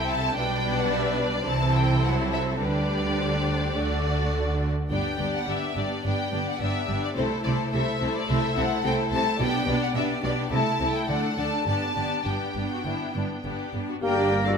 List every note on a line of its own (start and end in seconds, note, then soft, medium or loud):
0.00 0.38 C2 soft
0.00 0.38 C3 soft
0.00 0.36 C4 soft
0.00 0.36 E4 soft
0.00 0.36 A4 soft
0.00 0.37 E5 soft
0.07 0.37 A5 medium
0.36 1.45 B1 soft
0.36 1.45 B2 soft
0.36 1.44 G3 soft
0.36 1.44 D4 medium
0.36 1.45 B4 soft
0.36 1.44 D5 soft
0.36 0.78 G5 medium
0.79 0.93 F#5 medium
0.92 1.21 E5 medium
1.19 1.47 D5 medium
1.48 2.60 C2 soft
1.48 2.60 C3 soft
1.48 2.05 E3 soft
1.48 2.62 E4 soft
1.48 2.59 A4 soft
1.48 2.62 C5 soft
1.48 1.76 A5 medium
1.75 2.04 G5 medium
2.04 2.62 F#3 soft
2.04 2.12 F#5 medium
2.34 2.42 E5 medium
2.60 3.76 D2 soft
2.60 3.76 D3 soft
2.60 3.74 G3 soft
2.60 3.74 D4 soft
2.60 3.77 G4 soft
2.60 3.18 B4 soft
2.60 4.57 D5 medium
3.20 3.77 C5 soft
3.76 4.69 D2 soft
3.76 4.69 D3 soft
3.76 4.70 A3 soft
3.76 4.68 D4 soft
3.76 4.70 F#4 soft
3.76 4.70 D5 soft
4.90 4.99 G1 soft
4.90 4.99 G2 soft
4.90 5.18 B3 soft
4.90 5.18 D4 soft
4.90 5.18 G4 soft
4.90 5.17 D5 soft
4.90 5.30 G5 medium
5.19 5.27 G1 soft
5.19 5.27 G2 soft
5.19 5.47 B3 soft
5.19 5.46 D4 soft
5.19 5.47 G4 soft
5.19 5.47 D5 soft
5.34 5.48 F#5 soft
5.48 5.56 G1 soft
5.48 5.56 G2 soft
5.48 5.76 B3 soft
5.48 5.75 D4 soft
5.48 5.75 G4 soft
5.48 5.75 D5 soft
5.48 5.77 E5 soft
5.75 5.83 G1 soft
5.75 5.84 G2 soft
5.75 6.04 B3 soft
5.75 6.04 D4 soft
5.75 6.03 G4 soft
5.75 6.03 D5 soft
5.75 6.05 D5 soft
6.04 6.13 G1 soft
6.04 6.13 G2 soft
6.04 6.32 B3 soft
6.04 6.32 D4 soft
6.04 6.31 G4 soft
6.04 6.31 D5 soft
6.04 6.47 G5 soft
6.32 6.41 G1 soft
6.32 6.41 G2 soft
6.32 6.59 B3 soft
6.32 6.59 D4 soft
6.32 6.60 G4 soft
6.32 6.60 D5 soft
6.49 6.62 F#5 soft
6.60 6.69 G1 soft
6.60 6.69 G2 soft
6.60 6.87 B3 soft
6.60 6.87 D4 soft
6.60 6.87 G4 soft
6.60 6.86 D5 soft
6.60 7.02 E5 medium
6.87 6.97 G1 soft
6.87 6.97 G2 soft
6.87 7.16 B3 soft
6.87 7.16 D4 soft
6.87 7.16 G4 soft
6.87 7.16 D5 soft
7.04 7.09 D5 medium
7.16 7.25 C2 soft
7.16 7.25 C3 soft
7.16 7.42 A3 soft
7.16 7.42 E4 soft
7.16 7.44 A4 soft
7.16 7.44 C5 soft
7.16 7.25 C5 medium
7.43 7.53 C2 soft
7.43 7.53 C3 soft
7.43 7.70 A3 soft
7.43 7.71 E4 soft
7.43 7.72 A4 soft
7.43 7.72 C5 soft
7.43 7.51 D5 medium
7.72 7.82 C2 soft
7.72 7.82 C3 soft
7.72 7.99 A3 soft
7.72 7.99 E4 soft
7.72 7.99 A4 soft
7.72 7.99 C5 soft
7.72 8.14 E5 medium
8.00 8.10 C2 soft
8.00 8.10 C3 soft
8.00 8.27 A3 soft
8.00 8.27 E4 soft
8.00 8.28 A4 soft
8.00 8.28 C5 soft
8.15 8.29 D5 medium
8.28 8.38 C2 medium
8.28 8.38 C3 soft
8.28 8.55 A3 soft
8.28 8.55 E4 soft
8.28 8.56 A4 soft
8.28 8.56 C5 soft
8.28 8.57 E5 medium
8.56 8.65 C2 soft
8.56 8.66 C3 medium
8.56 8.83 A3 soft
8.56 8.83 E4 soft
8.56 8.84 A4 soft
8.56 8.84 C5 soft
8.56 8.84 F#5 medium
8.84 8.93 C2 soft
8.84 8.93 C3 medium
8.84 9.11 A3 soft
8.84 9.11 E4 soft
8.84 9.09 A4 soft
8.84 9.10 C5 soft
8.84 8.93 G5 medium
9.10 9.20 C2 soft
9.10 9.21 C3 soft
9.10 9.40 A3 soft
9.10 9.40 E4 soft
9.10 9.39 A4 soft
9.10 9.39 C5 soft
9.10 9.40 A5 medium
9.39 9.48 B1 medium
9.39 9.48 B2 medium
9.39 9.67 B3 medium
9.39 9.67 D4 medium
9.39 9.66 G4 soft
9.39 9.67 D5 soft
9.39 9.81 G5 medium
9.67 9.76 B1 medium
9.67 9.75 B2 soft
9.67 9.94 B3 soft
9.67 9.95 D4 medium
9.67 9.95 G4 soft
9.67 9.95 D5 soft
9.83 9.88 F#5 medium
9.95 10.04 B1 medium
9.95 10.03 B2 medium
9.95 10.23 B3 soft
9.95 10.22 D4 soft
9.95 10.22 G4 soft
9.95 10.23 D5 soft
9.95 10.04 E5 medium
10.23 10.32 B1 soft
10.23 10.31 B2 soft
10.23 10.51 B3 soft
10.23 10.51 D4 soft
10.23 10.51 G4 soft
10.23 10.51 D5 soft
10.23 10.32 D5 medium
10.51 10.59 C2 medium
10.51 10.59 C3 soft
10.51 10.79 A3 soft
10.51 10.79 E4 soft
10.51 10.78 E4 soft
10.51 10.78 A4 soft
10.51 10.94 A5 medium
10.79 10.88 C2 soft
10.79 10.88 C3 soft
10.79 11.07 A3 soft
10.79 11.08 E4 soft
10.79 11.07 A4 soft
10.94 11.09 G5 medium
11.08 11.16 D2 soft
11.08 11.17 D3 soft
11.08 11.37 A3 soft
11.08 11.37 D4 soft
11.08 11.37 A4 soft
11.08 11.37 D5 soft
11.08 11.37 F#5 medium
11.37 11.45 D2 soft
11.37 11.46 D3 soft
11.37 11.67 A3 soft
11.37 11.67 D4 soft
11.37 11.67 A4 soft
11.37 11.65 D5 soft
11.37 11.65 A5 medium
11.66 11.74 G1 soft
11.66 11.75 G2 soft
11.66 11.96 B3 soft
11.66 11.96 D4 soft
11.66 11.95 G4 soft
11.66 11.95 D5 soft
11.66 12.25 A5 medium
11.96 12.04 G1 soft
11.96 12.05 G2 soft
11.96 12.25 B3 soft
11.96 12.25 D4 soft
11.96 12.24 G4 soft
11.96 12.25 D5 soft
12.25 12.33 G1 soft
12.25 12.34 G2 soft
12.25 12.55 B3 soft
12.25 12.55 D4 soft
12.25 12.67 G4 soft
12.25 13.73 G5 soft
12.56 12.64 G1 soft
12.56 12.65 G2 soft
12.56 12.85 B3 soft
12.56 12.84 D4 soft
12.72 12.86 F#4 soft
12.85 12.93 G1 soft
12.85 12.94 G2 soft
12.85 13.13 B3 soft
12.85 13.13 D4 soft
12.85 13.15 E4 soft
13.14 13.23 G1 soft
13.14 13.24 G2 soft
13.14 13.43 B3 soft
13.14 13.43 D4 soft
13.14 13.24 D4 soft
13.44 13.53 G1 soft
13.44 13.53 G2 soft
13.44 13.72 B3 soft
13.44 13.72 D4 soft
13.44 13.87 G4 soft
13.73 13.82 G1 soft
13.73 13.83 G2 soft
13.73 14.02 B3 soft
13.73 14.02 D4 soft
13.89 13.95 F#4 soft
14.02 14.58 G1 soft
14.02 14.58 G2 soft
14.02 14.43 A#3 medium
14.02 14.56 A#3 soft
14.02 14.16 A#3 soft
14.02 14.42 G4 medium
14.02 14.58 A#4 soft
14.02 14.16 A#4 soft
14.02 14.58 D5 soft
14.02 14.43 G5 soft
14.02 14.16 G5 soft
14.17 14.32 D4 soft
14.17 14.32 G4 soft
14.17 14.32 D5 soft
14.31 14.46 A#3 soft
14.31 14.46 A#4 soft
14.31 14.46 G5 soft
14.44 14.58 A3 soft
14.44 14.58 D4 soft
14.44 14.53 F4 medium
14.44 14.58 G4 soft
14.44 14.58 D5 soft
14.44 14.50 F5 soft